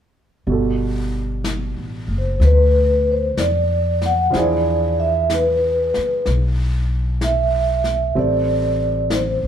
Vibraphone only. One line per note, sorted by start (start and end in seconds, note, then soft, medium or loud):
2.18 2.45 C5 medium
2.44 3.11 B4 medium
3.12 3.38 C5 medium
3.39 4.07 D5 medium
4.06 4.31 F#5 medium
4.32 4.35 C5 medium
4.37 5.04 D5 medium
5.00 5.31 E5 medium
5.34 6.24 B4 medium
7.24 8.14 E5 medium
8.19 9.15 D5 medium
9.14 9.47 C5 medium